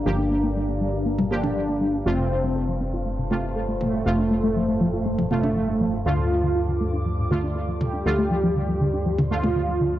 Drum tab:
T2 |---------o-o----|--------------o-|---------o-o----|--------------o-|

T2 |---------o-o----|